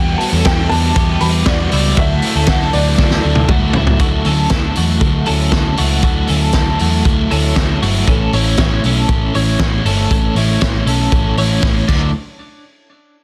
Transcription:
Already playing: E2 E3 G3 B3 F#4 G5
0.18 G3 B3 F#4 A5, open hi-hat
0.32 E2 C#4 A4
0.45 E3 G3 B3 E4 F#4 A4 G5, kick, snare, hi-hat pedal, ride
0.69 E2 G3 B3 D4 F#4 B4 A5, open hi-hat
0.96 E2 E3 G3 B3 F#4 G4, kick, hi-hat pedal, ride
1.20 E2 G3 B3 F#4 B5, open hi-hat
1.46 E3 G3 B3 F#4 D5, kick, snare, hi-hat pedal, ride
1.72 C#2 G3 B3 E4 F#4, open hi-hat
1.97 D2 D3 F#3 A3 E4 F#4 E5, kick, hi-hat pedal, ride
2.22 F#3 A3 E4, open hi-hat
2.35 D2 C#4 A4
2.47 D2 D3 F#3 A3 D4 E4 A4 F#5, kick, snare, ride
2.73 D2 F#3 A3 D4 E4 B4 D5, open hi-hat
2.98 D2 D3 F#3 A3 D4 E4 A4, kick, snare
3.10 snare
3.24 D2 F#3 A3 E4
3.35 high tom
3.48 D2 D3 F#3 A3 E4 F#4, kick, mid tom
3.73 C#2 F#3 G3 A3 E4, floor tom
3.87 floor tom
3.98 D2 D3 F#3 A3 E4 F#4, kick, closed hi-hat
4.24 D2 F#3 A3 C#4 E4 A4, open hi-hat
4.49 D2 D3 F#3 A3 D4 E4 A4, kick, snare, closed hi-hat
4.75 E2 F#3 A3 E4 F#4, open hi-hat
5.00 D2 D3 F#3 A3 E4, kick, closed hi-hat
5.26 D2 F#3 A3 C#4 E4 A4, open hi-hat
5.51 D3 F#3 A3 E4, kick, snare, closed hi-hat
5.77 C#2 F#3 A3 E4 F#4, open hi-hat
6.02 D2 D3 F#3 A3 E4 F#4, kick, closed hi-hat
6.27 D2 F#3 A3 C#4 E4 A4, open hi-hat
6.53 D2 D3 F#3 A3 D4 E4 A4, kick, snare, closed hi-hat
6.79 E2 F#3 A3 E4 F#4, open hi-hat
7.04 D2 D3 F#3 A3 E4, kick, closed hi-hat
7.29 D2 F#3 A3 C#4 E4 A4, open hi-hat
7.55 D2 D3 F#3 A3 E4, kick, snare, closed hi-hat
7.82 G1 F#3 A3 E4 F#4, open hi-hat
8.06 A1 A2 E3 A3 C#4 E4 A4, kick, closed hi-hat
8.32 A1 A3 C#4 E4 C#5, open hi-hat
8.57 A1 A2 E3 A3 C#4 E4 C#5, kick, snare, closed hi-hat
8.84 B1 A3 C#4 E4 A4, open hi-hat
9.08 A1 E3 A3 C#4 E4, kick, closed hi-hat
9.33 A1 A3 C#4 E4 C#5, open hi-hat
9.59 A1 A2 E3 A3 C#4 E4, kick, snare
9.84 G1 A3 C#4 E4 A4, open hi-hat
10.10 A1 A2 E3 A3 C#4 E4 A4, kick, closed hi-hat
10.35 A1 A3 C#4 E4 C#5, open hi-hat
10.61 A1 A2 E3 A3 C#4 E4 C#5, kick, snare, closed hi-hat
10.86 B1 A3 C#4 E4 A4, open hi-hat
11.12 A1 E3 A3 C#4 E4, kick, closed hi-hat
11.36 A1 A3 C#4 E4 C#5, open hi-hat
11.63 A1 A2 E3 A3 C#4 E4, kick, snare
11.88 D2 D3 F#3 A3 D4 E4, kick, crash

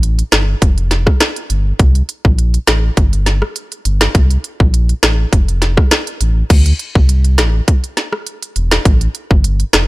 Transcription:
Already playing: A1
0.03 closed hi-hat
0.19 closed hi-hat
0.32 G1, cross-stick, snare, closed hi-hat
0.62 F1, kick, closed hi-hat
0.78 closed hi-hat
0.91 snare, closed hi-hat
1.07 kick, cross-stick
1.20 cross-stick, snare, closed hi-hat
1.36 closed hi-hat
1.50 G1, closed hi-hat
1.79 C2, kick, closed hi-hat
1.95 closed hi-hat
2.09 closed hi-hat
2.25 A#1, kick
2.39 closed hi-hat
2.54 closed hi-hat
2.67 A1, cross-stick, snare, closed hi-hat
2.97 G1, kick, closed hi-hat
3.13 closed hi-hat
3.26 snare, closed hi-hat
3.42 cross-stick
3.56 closed hi-hat
3.72 closed hi-hat
3.85 G1, closed hi-hat
4.01 cross-stick, snare
4.15 C2, kick, closed hi-hat
4.30 closed hi-hat
4.44 closed hi-hat
4.60 A#1, kick
4.74 closed hi-hat
4.89 closed hi-hat
5.03 A1, cross-stick, snare, closed hi-hat
5.33 F1, kick, closed hi-hat
5.48 closed hi-hat
5.62 snare, closed hi-hat
5.77 kick, cross-stick
5.91 cross-stick, snare, closed hi-hat
6.07 closed hi-hat
6.21 A1, closed hi-hat
6.50 D2, kick, closed hi-hat, crash
6.66 closed hi-hat
6.79 closed hi-hat
6.95 C2, kick
7.09 closed hi-hat
7.25 closed hi-hat
7.38 A1, cross-stick, snare, closed hi-hat
7.68 kick, closed hi-hat
7.84 closed hi-hat
7.97 snare, closed hi-hat
8.13 cross-stick
8.27 closed hi-hat
8.43 closed hi-hat
8.56 E1, closed hi-hat
8.71 cross-stick, snare
8.85 A1, kick, closed hi-hat
9.01 closed hi-hat
9.15 closed hi-hat
9.31 G1, kick
9.44 closed hi-hat
9.60 closed hi-hat
9.73 F1, cross-stick, snare, closed hi-hat

